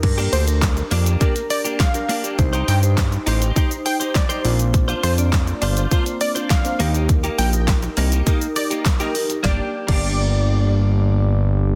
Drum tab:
CC |x---------------|----------------|----------------|----------------|
HH |-xoxxxoxxxoxxxox|xxoxxxoxxxoxxxox|xxoxxxoxxxoxxxox|xxoxxxoxxxoxxxox|
SH |-xxxxxxxxxxxxxxx|xxxxxxxxxxxxxxxx|xxxxxxxxxxxxxxxx|xxxxxxxxxxxxxxxx|
CP |----x-------x---|----x-------x---|----x-------x---|----x-------x---|
SD |----o-------o---|----o-------o---|----o-------o---|----o-------o---|
BD |o---o---o---o---|o---o---o---o---|o---o---o---o---|o---o---o---o---|

CC |---x------------|
HH |----------------|
SH |----------------|
CP |----------------|
SD |o---------------|
BD |o--o------------|